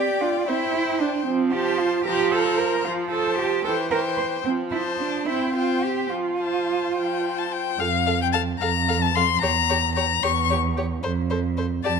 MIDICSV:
0, 0, Header, 1, 5, 480
1, 0, Start_track
1, 0, Key_signature, -1, "major"
1, 0, Tempo, 530973
1, 1149, Time_signature, 6, 3, 24, 8
1, 4033, Tempo, 556586
1, 6913, Tempo, 539084
1, 10649, End_track
2, 0, Start_track
2, 0, Title_t, "Violin"
2, 0, Program_c, 0, 40
2, 0, Note_on_c, 0, 79, 54
2, 421, Note_off_c, 0, 79, 0
2, 426, Note_on_c, 0, 79, 51
2, 1131, Note_off_c, 0, 79, 0
2, 1390, Note_on_c, 0, 81, 49
2, 1853, Note_off_c, 0, 81, 0
2, 1861, Note_on_c, 0, 82, 47
2, 2095, Note_off_c, 0, 82, 0
2, 2105, Note_on_c, 0, 82, 56
2, 2573, Note_off_c, 0, 82, 0
2, 2818, Note_on_c, 0, 81, 50
2, 3291, Note_off_c, 0, 81, 0
2, 3295, Note_on_c, 0, 79, 47
2, 3531, Note_off_c, 0, 79, 0
2, 3537, Note_on_c, 0, 79, 55
2, 4019, Note_off_c, 0, 79, 0
2, 4267, Note_on_c, 0, 81, 47
2, 4729, Note_off_c, 0, 81, 0
2, 4741, Note_on_c, 0, 79, 41
2, 4973, Note_off_c, 0, 79, 0
2, 4979, Note_on_c, 0, 79, 50
2, 5451, Note_off_c, 0, 79, 0
2, 5710, Note_on_c, 0, 81, 40
2, 6136, Note_off_c, 0, 81, 0
2, 6185, Note_on_c, 0, 79, 60
2, 6556, Note_on_c, 0, 81, 53
2, 6568, Note_off_c, 0, 79, 0
2, 6668, Note_on_c, 0, 79, 66
2, 6681, Note_off_c, 0, 81, 0
2, 6908, Note_on_c, 0, 77, 80
2, 6921, Note_off_c, 0, 79, 0
2, 7274, Note_off_c, 0, 77, 0
2, 7285, Note_on_c, 0, 79, 72
2, 7332, Note_off_c, 0, 79, 0
2, 7382, Note_on_c, 0, 81, 71
2, 7453, Note_off_c, 0, 81, 0
2, 7620, Note_on_c, 0, 82, 72
2, 7997, Note_on_c, 0, 81, 77
2, 8010, Note_off_c, 0, 82, 0
2, 8115, Note_on_c, 0, 84, 87
2, 8129, Note_off_c, 0, 81, 0
2, 8343, Note_off_c, 0, 84, 0
2, 8348, Note_on_c, 0, 82, 87
2, 8820, Note_off_c, 0, 82, 0
2, 8828, Note_on_c, 0, 82, 72
2, 9074, Note_on_c, 0, 85, 72
2, 9088, Note_off_c, 0, 82, 0
2, 9315, Note_off_c, 0, 85, 0
2, 10509, Note_on_c, 0, 81, 70
2, 10649, Note_off_c, 0, 81, 0
2, 10649, End_track
3, 0, Start_track
3, 0, Title_t, "Violin"
3, 0, Program_c, 1, 40
3, 0, Note_on_c, 1, 74, 52
3, 432, Note_on_c, 1, 72, 55
3, 446, Note_off_c, 1, 74, 0
3, 1148, Note_off_c, 1, 72, 0
3, 1386, Note_on_c, 1, 72, 51
3, 1851, Note_off_c, 1, 72, 0
3, 1867, Note_on_c, 1, 72, 47
3, 2098, Note_off_c, 1, 72, 0
3, 2108, Note_on_c, 1, 72, 49
3, 2574, Note_off_c, 1, 72, 0
3, 2828, Note_on_c, 1, 72, 49
3, 3292, Note_off_c, 1, 72, 0
3, 3298, Note_on_c, 1, 72, 53
3, 3537, Note_off_c, 1, 72, 0
3, 3543, Note_on_c, 1, 72, 55
3, 4022, Note_off_c, 1, 72, 0
3, 4268, Note_on_c, 1, 72, 51
3, 4729, Note_off_c, 1, 72, 0
3, 4739, Note_on_c, 1, 72, 46
3, 4973, Note_off_c, 1, 72, 0
3, 4982, Note_on_c, 1, 72, 40
3, 5452, Note_off_c, 1, 72, 0
3, 5706, Note_on_c, 1, 72, 38
3, 6416, Note_off_c, 1, 72, 0
3, 6427, Note_on_c, 1, 72, 38
3, 6900, Note_off_c, 1, 72, 0
3, 6906, Note_on_c, 1, 77, 57
3, 6977, Note_off_c, 1, 77, 0
3, 7148, Note_on_c, 1, 77, 48
3, 7219, Note_off_c, 1, 77, 0
3, 7391, Note_on_c, 1, 77, 45
3, 7462, Note_off_c, 1, 77, 0
3, 7632, Note_on_c, 1, 77, 49
3, 7703, Note_off_c, 1, 77, 0
3, 7876, Note_on_c, 1, 77, 46
3, 7947, Note_off_c, 1, 77, 0
3, 8123, Note_on_c, 1, 77, 46
3, 8195, Note_off_c, 1, 77, 0
3, 8360, Note_on_c, 1, 73, 57
3, 8431, Note_off_c, 1, 73, 0
3, 8597, Note_on_c, 1, 73, 47
3, 8668, Note_off_c, 1, 73, 0
3, 8839, Note_on_c, 1, 73, 47
3, 8910, Note_off_c, 1, 73, 0
3, 9076, Note_on_c, 1, 73, 53
3, 9147, Note_off_c, 1, 73, 0
3, 9314, Note_on_c, 1, 73, 51
3, 9385, Note_off_c, 1, 73, 0
3, 9562, Note_on_c, 1, 73, 46
3, 9633, Note_off_c, 1, 73, 0
3, 9788, Note_on_c, 1, 72, 57
3, 9859, Note_off_c, 1, 72, 0
3, 10030, Note_on_c, 1, 72, 47
3, 10101, Note_off_c, 1, 72, 0
3, 10272, Note_on_c, 1, 72, 43
3, 10343, Note_off_c, 1, 72, 0
3, 10510, Note_on_c, 1, 74, 52
3, 10581, Note_off_c, 1, 74, 0
3, 10649, End_track
4, 0, Start_track
4, 0, Title_t, "Viola"
4, 0, Program_c, 2, 41
4, 188, Note_on_c, 2, 62, 56
4, 260, Note_off_c, 2, 62, 0
4, 441, Note_on_c, 2, 60, 63
4, 514, Note_off_c, 2, 60, 0
4, 667, Note_on_c, 2, 64, 68
4, 903, Note_off_c, 2, 64, 0
4, 911, Note_on_c, 2, 62, 68
4, 983, Note_off_c, 2, 62, 0
4, 1143, Note_on_c, 2, 53, 68
4, 1774, Note_off_c, 2, 53, 0
4, 1860, Note_on_c, 2, 53, 84
4, 2494, Note_off_c, 2, 53, 0
4, 2575, Note_on_c, 2, 53, 71
4, 3214, Note_off_c, 2, 53, 0
4, 3299, Note_on_c, 2, 52, 69
4, 3944, Note_off_c, 2, 52, 0
4, 4029, Note_on_c, 2, 53, 55
4, 4652, Note_off_c, 2, 53, 0
4, 4736, Note_on_c, 2, 60, 65
4, 5372, Note_off_c, 2, 60, 0
4, 5456, Note_on_c, 2, 53, 46
4, 6103, Note_off_c, 2, 53, 0
4, 6188, Note_on_c, 2, 53, 61
4, 6826, Note_off_c, 2, 53, 0
4, 6907, Note_on_c, 2, 69, 51
4, 6979, Note_off_c, 2, 69, 0
4, 7149, Note_on_c, 2, 69, 59
4, 7220, Note_off_c, 2, 69, 0
4, 7393, Note_on_c, 2, 69, 49
4, 7465, Note_off_c, 2, 69, 0
4, 7640, Note_on_c, 2, 69, 60
4, 7712, Note_off_c, 2, 69, 0
4, 7882, Note_on_c, 2, 69, 57
4, 7954, Note_off_c, 2, 69, 0
4, 8116, Note_on_c, 2, 69, 51
4, 8188, Note_off_c, 2, 69, 0
4, 8353, Note_on_c, 2, 67, 51
4, 8424, Note_off_c, 2, 67, 0
4, 8601, Note_on_c, 2, 67, 54
4, 8672, Note_off_c, 2, 67, 0
4, 8837, Note_on_c, 2, 67, 45
4, 8908, Note_off_c, 2, 67, 0
4, 9077, Note_on_c, 2, 67, 60
4, 9148, Note_off_c, 2, 67, 0
4, 9321, Note_on_c, 2, 67, 51
4, 9392, Note_off_c, 2, 67, 0
4, 9555, Note_on_c, 2, 67, 49
4, 9626, Note_off_c, 2, 67, 0
4, 9794, Note_on_c, 2, 69, 44
4, 9865, Note_off_c, 2, 69, 0
4, 10039, Note_on_c, 2, 69, 57
4, 10110, Note_off_c, 2, 69, 0
4, 10275, Note_on_c, 2, 69, 44
4, 10346, Note_off_c, 2, 69, 0
4, 10514, Note_on_c, 2, 67, 57
4, 10585, Note_off_c, 2, 67, 0
4, 10649, End_track
5, 0, Start_track
5, 0, Title_t, "Cello"
5, 0, Program_c, 3, 42
5, 0, Note_on_c, 3, 67, 70
5, 192, Note_on_c, 3, 65, 72
5, 205, Note_off_c, 3, 67, 0
5, 428, Note_off_c, 3, 65, 0
5, 434, Note_on_c, 3, 64, 77
5, 905, Note_on_c, 3, 62, 76
5, 918, Note_off_c, 3, 64, 0
5, 1138, Note_off_c, 3, 62, 0
5, 1143, Note_on_c, 3, 60, 76
5, 1378, Note_on_c, 3, 67, 85
5, 1391, Note_off_c, 3, 60, 0
5, 1615, Note_on_c, 3, 65, 73
5, 1628, Note_off_c, 3, 67, 0
5, 1846, Note_off_c, 3, 65, 0
5, 1852, Note_on_c, 3, 67, 93
5, 2095, Note_on_c, 3, 69, 83
5, 2108, Note_off_c, 3, 67, 0
5, 2332, Note_on_c, 3, 70, 82
5, 2346, Note_off_c, 3, 69, 0
5, 2571, Note_on_c, 3, 65, 75
5, 2585, Note_off_c, 3, 70, 0
5, 2808, Note_off_c, 3, 65, 0
5, 2813, Note_on_c, 3, 69, 82
5, 3050, Note_off_c, 3, 69, 0
5, 3055, Note_on_c, 3, 67, 74
5, 3287, Note_off_c, 3, 67, 0
5, 3292, Note_on_c, 3, 69, 88
5, 3365, Note_off_c, 3, 69, 0
5, 3534, Note_on_c, 3, 70, 92
5, 3607, Note_off_c, 3, 70, 0
5, 3774, Note_on_c, 3, 72, 77
5, 3847, Note_off_c, 3, 72, 0
5, 4019, Note_on_c, 3, 60, 73
5, 4089, Note_off_c, 3, 60, 0
5, 4251, Note_on_c, 3, 64, 68
5, 4320, Note_off_c, 3, 64, 0
5, 4490, Note_on_c, 3, 62, 67
5, 4725, Note_on_c, 3, 64, 82
5, 4738, Note_off_c, 3, 62, 0
5, 4966, Note_off_c, 3, 64, 0
5, 4972, Note_on_c, 3, 65, 73
5, 5213, Note_on_c, 3, 67, 65
5, 5226, Note_off_c, 3, 65, 0
5, 5451, Note_on_c, 3, 65, 66
5, 5464, Note_off_c, 3, 67, 0
5, 6667, Note_off_c, 3, 65, 0
5, 6906, Note_on_c, 3, 41, 63
5, 7548, Note_off_c, 3, 41, 0
5, 7633, Note_on_c, 3, 41, 74
5, 8270, Note_off_c, 3, 41, 0
5, 8359, Note_on_c, 3, 40, 63
5, 8990, Note_off_c, 3, 40, 0
5, 9076, Note_on_c, 3, 40, 69
5, 9711, Note_off_c, 3, 40, 0
5, 9798, Note_on_c, 3, 41, 61
5, 10430, Note_off_c, 3, 41, 0
5, 10520, Note_on_c, 3, 41, 75
5, 10649, Note_off_c, 3, 41, 0
5, 10649, End_track
0, 0, End_of_file